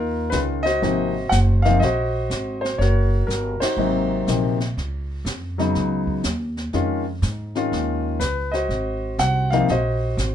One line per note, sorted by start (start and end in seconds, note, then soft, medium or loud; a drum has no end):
0.00 0.31 D#2 medium
0.00 0.79 D#4 medium
0.00 0.33 F4 medium
0.00 0.34 A#4 medium
0.30 0.81 C#2 medium
0.30 0.62 D#3 soft
0.30 0.62 G#3 soft
0.30 0.62 C#4 soft
0.30 0.38 B4 medium
0.30 snare medium
0.30 hi-hat pedal soft
0.34 0.63 F4 medium
0.63 1.61 F#4 medium
0.63 1.60 C5 medium
0.63 1.32 D#5 loud
0.63 snare soft
0.82 1.30 G#1 medium
0.82 1.11 C3 medium
0.82 1.11 F3 medium
0.82 1.12 A#3 medium
0.82 1.12 D#4 medium
0.82 brush sweep soft
0.82 snare soft
1.29 1.79 F#1 medium
1.29 1.37 F#5 medium
1.29 snare medium
1.29 hi-hat pedal soft
1.62 1.79 C3 medium
1.62 1.79 F3 medium
1.62 1.80 A#3 medium
1.62 1.80 D#4 medium
1.62 1.79 F5 medium
1.62 snare soft
1.80 2.28 A#1 medium
1.80 2.60 C5 medium
1.80 2.64 D#5 medium
1.80 brush sweep soft
1.80 snare soft
1.84 2.77 F#4 medium
2.30 2.78 G#1 medium
2.30 snare soft
2.30 hi-hat pedal medium
2.61 2.79 C5 medium
2.61 snare soft
2.78 3.27 F#1 medium
2.78 3.61 F#4 medium
2.78 3.25 A#4 medium
2.78 3.29 C#5 medium
2.78 brush sweep soft
2.78 snare soft
3.27 3.59 G1 medium
3.27 3.61 A#4 medium
3.27 snare medium
3.27 hi-hat pedal soft
3.60 3.78 D#4 medium
3.60 4.56 F#4 medium
3.60 4.55 C5 medium
3.60 muted upright bass stroke soft
3.60 snare medium
3.60 ride medium
3.77 4.25 G#1 medium
3.77 4.25 C3 medium
3.77 4.25 F#3 soft
3.77 4.26 A#3 soft
3.77 4.26 D#4 medium
3.77 brush sweep soft
4.27 4.75 A#1 medium
4.27 4.57 C3 medium
4.27 4.57 F3 soft
4.27 4.57 A#3 soft
4.27 4.57 D#4 medium
4.27 snare medium
4.27 hi-hat pedal soft
4.60 snare soft
4.77 5.24 C#2 medium
4.77 brush sweep soft
4.77 snare soft
5.25 5.73 F2 medium
5.25 snare medium
5.25 hi-hat pedal soft
5.58 6.21 C#3 medium
5.58 6.21 F#3 medium
5.58 6.21 B3 medium
5.58 6.21 D#4 medium
5.58 snare soft
5.75 6.23 C#2 medium
5.75 brush sweep soft
5.75 snare soft
6.07 kick medium
6.24 6.72 D#2 medium
6.24 snare medium
6.24 hi-hat pedal medium
6.57 snare soft
6.73 7.21 F2 medium
6.73 7.03 D#3 medium
6.73 7.03 G#3 medium
6.73 7.03 C#4 medium
6.73 7.03 F4 medium
6.73 brush sweep soft
6.73 snare soft
7.22 7.70 G#2 medium
7.22 snare medium
7.22 hi-hat pedal medium
7.55 8.18 D#3 medium
7.55 8.18 G#3 medium
7.55 8.18 C#4 medium
7.55 8.18 F4 medium
7.55 snare soft
7.72 8.19 D#2 medium
7.72 brush sweep soft
7.72 snare soft
8.20 8.68 C#2 medium
8.20 8.51 B4 medium
8.20 snare medium
8.20 hi-hat pedal medium
8.52 9.49 F#4 medium
8.52 9.48 C5 medium
8.52 9.15 D#5 medium
8.52 snare soft
8.69 9.17 G#1 medium
8.69 brush sweep soft
8.69 snare soft
9.18 9.67 C2 medium
9.18 9.53 F#5 medium
9.18 snare medium
9.18 hi-hat pedal soft
9.50 9.67 C3 medium
9.50 9.67 F3 medium
9.50 9.68 A#3 medium
9.50 9.68 D#4 medium
9.50 9.69 F5 medium
9.50 snare soft
9.68 10.17 A#1 medium
9.68 10.35 F#4 medium
9.68 10.35 C5 medium
9.68 10.15 D#5 medium
9.68 brush sweep soft
9.68 snare soft
10.17 10.35 G#1 medium
10.17 snare medium
10.17 hi-hat pedal medium